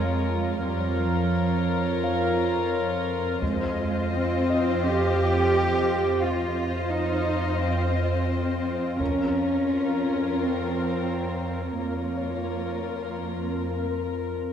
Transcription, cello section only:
Already playing: G#3
0.63 G3
0.98 F3
3.42 G#3
4.12 C4
4.83 G4
6.21 F4
6.91 D#4
7.60 C4
7.94 C4
8.99 C#4
10.40 C4
11.79 A#3

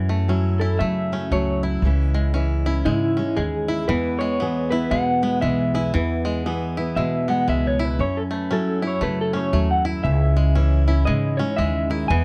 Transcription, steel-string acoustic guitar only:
Already playing: F#2 C#4
0.28 F#3 E4
0.61 C#4
0.81 C#3
1.12 A3
1.32 F#3
1.64 E4
1.84 C#3 E3 G#3 C#4 E4
2.35 E3 E4
2.67 C#4
2.85 G#2
3.19 G#3
3.69 E4
3.88 E2 B3
4.41 E3 G#4
4.71 B3
4.90 B2
5.22 G#3
5.41 E3
5.74 G#4
5.95 E2 B3
6.46 E3 G#4
6.78 B3
6.98 B2
7.29 G#3
7.79 E2
8.00 F#2 C#4
8.51 F#3 E4
8.83 C#4
9.01 C#3
9.34 A3
9.53 F#3
9.85 E4
10.04 C#3 C#4
10.55 E3 E4
10.89 C#4
11.07 G#2
11.40 G#3
11.59 C#3
11.90 D#3
12.10 E2 B3

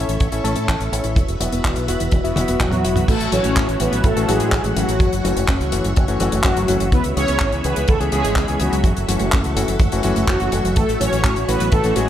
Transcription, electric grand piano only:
Already playing: C#4 E4 A4 E5
0.32 C#4 E4 A4 E5
0.44 C#4 E4 A4 A5
0.92 C#4 E4 A4 E5
1.40 B3 E4 F#4 E5
1.88 B3 E4 F#4 E5
2.24 B3 E4 F#4 E5
2.36 B3 E4 F#4 E5
2.72 B3 E4 F#4 E5
2.84 B3 E4 F#4 E5
3.32 E3 A3 C#4 F#4
3.80 E3 A3 C#4 F#4
4.16 E3 A3 C#4 F#4
4.28 E3 F#3 C#4 F#4
4.64 E3 A3 C#4 F#4
4.76 E3 A3 C#4 F#4
5.24 E3 A3 C#4 F#4
5.72 E3 A3 C#4 F#4
6.08 E3 A3 C#4 F#4
6.20 E3 A3 C#4 F#4
6.56 E3 A3 C#4 F#4
6.68 E3 A3 C#4 F#4
7.16 E3 B3 C#4 G#4
7.64 E3 B3 C#4 G#4
8.00 E3 B3 C#4 G#4
8.12 E3 B3 C#4 G#4
8.48 E3 B3 C#4 G#4
8.60 E3 B3 C#4 G#4
9.08 E3 A3 C#4 F#4
9.56 E3 A3 C#4 F#4
9.92 E3 A3 C#4 F#4
10.04 E3 A3 C#4 F#4
10.40 E3 A3 C#4 F#4
10.52 E3 A3 C#4 F#4
11.00 E3 A3 C#4 F#4
11.48 E3 A3 C#4 F#4
11.84 E3 A3 C#4 F#4
11.96 E3 F#3 C#4 F#4

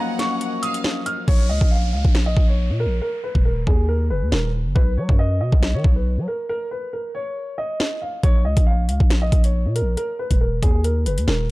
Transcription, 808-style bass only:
1.28 A#1
1.50 C#2
1.61 A#1
1.93 C#2
2.05 A#1
2.37 A#1
2.70 A#2
2.86 A#1
3.35 D#1
3.67 D#2
4.11 F#1
4.22 D#2
4.32 D#1
4.65 F#1
4.76 B1
4.97 F#3
5.09 F#2
5.41 B2
5.52 B1
5.74 D#3
5.84 B1
6.18 F#3
8.23 A#1
8.45 C#2
8.57 A#1
8.89 C#2
9.00 A#1
9.32 A#1
9.66 A#2
9.81 A#1
10.31 D#1
10.62 D#2
11.06 F#1
11.18 D#2
11.28 D#1

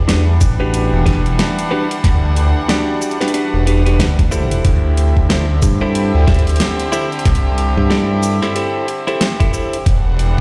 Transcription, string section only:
Already playing: E3 G3 D4 F#5
4.65 D3 C4 E4 G4
9.85 E3 G3 D4 F#5

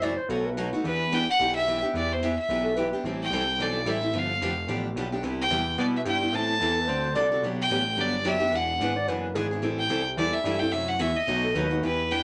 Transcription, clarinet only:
0.02 D5
0.17 C5
0.30 A4
0.46 B4
2.64 A4
2.76 B4
6.60 A4
6.81 B4
6.87 C5
7.15 D5
8.82 B4
8.96 D5
9.09 B4
9.35 G#4
11.43 A4
11.55 B4

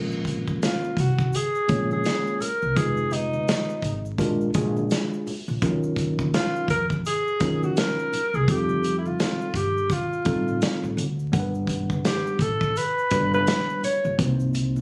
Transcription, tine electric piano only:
Already playing: G#3 A#3 C#4 F4
0.00 A#4
1.68 G#3 A#3 C#4 F4 C#5
2.75 G#3 B3 D#4 F4 B4
4.18 G#3 D4 F4 F#4 A#4
4.55 G#3 D4 F4 F#4 G#4
5.62 F3 C#4 D#4 F4 A#4
5.68 F#3
7.40 F#3 C#4 D#4 F4 A#4
8.48 G3 C4 D#4 F4 A4
10.25 G3 C4 D#4 F4 A4
11.32 G3 B3 D4 A#4 F#5
11.40 B4
13.11 G3 B3 D4 F#4 B4
14.18 A#3 C4 D#4 F#4 B4
14.26 C5

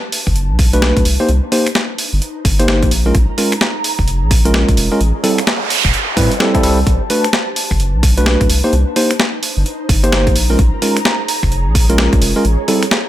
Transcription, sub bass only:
0.27 F#1
0.50 B1
0.97 B1
1.05 C2
1.29 C2
2.13 G1
2.45 G1
2.83 A#1
3.15 A#1
3.99 F1
4.22 A#1
4.69 A#1
4.77 F1
5.01 A1
5.85 E1
6.17 A2
6.64 C2
6.87 B1
7.71 F#1
7.94 B1
8.41 B1
8.50 C2
8.73 C2
9.57 G1
9.89 G1
10.27 A#1
10.59 A#1
11.43 F1
11.66 A#1
12.13 A#1
12.22 F1
12.45 A1

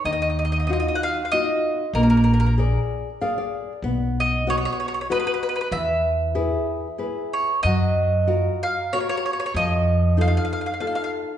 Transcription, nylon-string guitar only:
0.05 D#3
0.69 D#4 F4 F#4
1.33 D#4 F4 F#4
1.95 A#3
2.58 G#4 A#4 D5
3.21 G#4 A#4 D5 F5
3.38 D5
3.84 B3
4.47 F#4 B4 D#5
5.10 F#4 B4 D#5
5.72 E3
6.35 E4 G#4 B4
6.98 E4 G#4 B4
7.66 F#3
8.27 F4 F#4 A#4
8.93 F4 F#4 A#4
9.57 F3
10.17 D#4 F4 A4
10.80 D#4 F4 A4

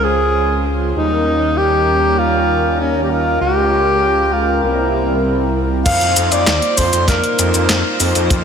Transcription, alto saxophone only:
0.04 G#4
0.96 D#4
1.57 G4
2.18 F4
2.80 C#4
3.03 G4
3.10 F4
3.41 G4
4.33 F4
4.63 A#3
5.86 F5
6.32 D5
6.78 C5
7.08 A#4

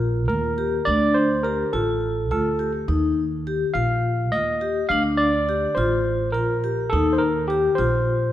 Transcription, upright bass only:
Already playing: A#1
0.29 D#2
0.87 D2
1.74 A1
2.31 D2
2.88 D#2
3.75 A#1
4.33 D#2
4.90 D2
5.77 A1
6.34 A#1
6.93 D#2
7.79 A#1

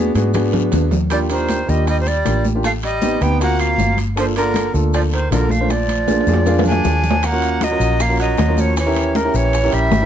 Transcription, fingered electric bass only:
0.15 G#2
0.72 D#2
1.69 D#2
2.26 A1
3.21 D2
3.78 G1
4.74 D2
5.31 A#1
6.27 F2
6.85 D#2
7.80 A#1
8.38 D#2
9.34 A#1
9.73 A#1
9.91 G#1

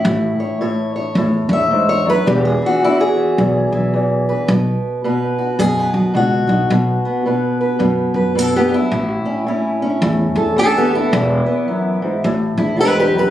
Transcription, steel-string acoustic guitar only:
Already playing: E3 E4
0.07 A2
0.40 C#5
0.61 A2 C#5
0.96 C#5
1.17 A2
1.52 C#5 E5
1.71 G#2
1.89 C#5
2.05 F#2
2.10 B4
2.26 E2 E3 G4
2.45 G#4
2.62 E3
2.66 F#4
2.82 E2 E4
3.01 G#4
3.16 E3
3.38 E2
3.72 E3
3.94 E2
4.29 B4
4.50 B2
5.04 B2 B4
5.38 F#4
5.59 B2 G#4
5.79 B4
5.93 F#4
6.14 B2 F#4
6.47 D#4
6.70 B2
7.05 B3
7.26 B2 B4
7.61 B4
7.79 B2
8.16 B4
8.35 B2 A4
8.56 B3 G4
8.71 F#3 E4
8.91 A2
9.25 C#4
9.47 A2 C#4
9.82 C#4
10.03 A2
10.37 A4
10.56 A2 C#4 A4
10.77 B3 G4
10.92 E3 E4
11.11 E2
11.46 B3
11.68 F#2
12.02 G#2
12.25 A2
12.58 E4
12.79 G#2 G4 B4
12.99 G4 B4
13.12 F#2
13.18 G4 B4

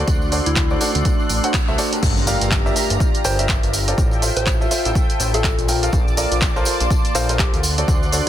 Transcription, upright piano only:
Already playing: F#4 A4 C5 D5
0.32 F#4 A4 C5 D5
0.71 F#4 A4 C5 D5
0.81 F#4 A4 C5 D5
1.44 F#4 A4 C5 F#5
1.68 F#4 A4 C5 E5
1.78 F#4 A4 C5 D5
1.93 G4 A#4 D5 A5
2.27 G4 A#4 D5 F5
2.66 G4 A#4 D5 E5
2.76 G4 A#4 D5 E5
3.25 G4 A#4 D5 G5
3.39 G4 A#4 D5 E5
3.88 F4 A4 C5 D5
4.22 F4 A4 C5 E5
4.61 F4 A4 C5 E5
4.71 F4 A4 C5 E5
5.34 F4 A4 C5 E5
5.69 F4 A4 A#4 G5
5.83 F4 A4 A#4 F5
6.17 F4 A4 A#4 D5
6.56 F4 A4 A#4 C5
6.66 F4 A4 A#4 C5
7.15 F4 A4 A#4 F5
7.29 F4 A4 A#4 C5
7.78 F#4 A4 C5 D5
8.13 F#4 A4 C5 D5

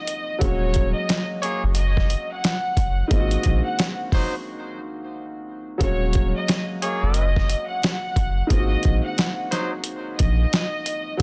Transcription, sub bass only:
0.41 D#1
1.64 F#1
2.77 F#1
3.11 G#1
3.46 A#1
5.81 D#1
7.03 F#1
8.16 F#1
8.50 G#1
8.85 A#1
10.20 A#1

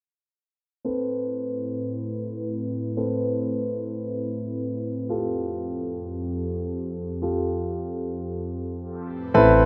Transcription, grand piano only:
0.85 C4 A4 B4
2.97 C4 A4 B4
5.09 F4 G4 A4
7.22 F4 G4 A4
9.34 C4 E4 A4 B4

